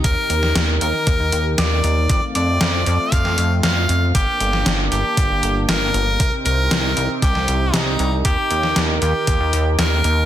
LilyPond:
<<
  \new Staff \with { instrumentName = "Tenor saxophone" } { \time 4/4 \key ees \lydian \tempo 4 = 117 bes'4. bes'4. d''4~ | d''8 d''4. f''4 f''4 | g'4. g'4. bes'4~ | bes'8 bes'4. g'4 ees'4 |
g'4. g'4. bes'4 | }
  \new Staff \with { instrumentName = "Analog synth pad" } { \time 4/4 \key ees \lydian << { <ees ees' g' bes'>1 | <a f'>1 | <bes g'>1 | <c c' g'>1 |
<ees bes'>1 | } \\ { r1 | c'1 | d'1 | ees'1~ |
ees'1 | } >> }
  \new Staff \with { instrumentName = "Analog synth bass" } { \clef bass \time 4/4 \key ees \lydian ees,16 r16 ees,8 ees,8 ees,16 r16 ees,16 ees,16 ees,8 ees,8 ees,8 | f,16 r16 f,8 f,8 f,16 r16 f,16 f,16 f,8 f,8 f,8 | g,,16 r16 g,,8 g,,8 g,,16 r16 g,,16 g,,16 g,,8 g,,8 g,,8 | c,16 r16 c,8 c,8 c,16 r16 c,16 c,16 c,8 c,8 c,8 |
ees,16 r16 ees,8 ees,8 ees,16 r16 ees,16 ees,16 ees,8 ees,8 ees,8 | }
  \new DrumStaff \with { instrumentName = "Drums" } \drummode { \time 4/4 <hh bd>8 hh16 sn16 <hh sn>8 hh8 <hh bd>8 hh8 <hh sn>8 hh8 | <hh bd>8 hh8 <hh sn>8 hh8 <hh bd>16 sn16 hh8 <hh sn>8 hh8 | <hh bd>8 hh16 sn16 <hh sn>8 hh8 <hh bd>8 hh8 <hh sn>8 hh8 | <hh bd>8 hh8 <hh sn>8 hh8 <hh bd>16 sn16 hh8 <hh sn>8 hh8 |
<hh bd>8 hh16 sn16 <hh sn>8 hh8 <hh bd>8 hh8 <hh sn>8 hh8 | }
>>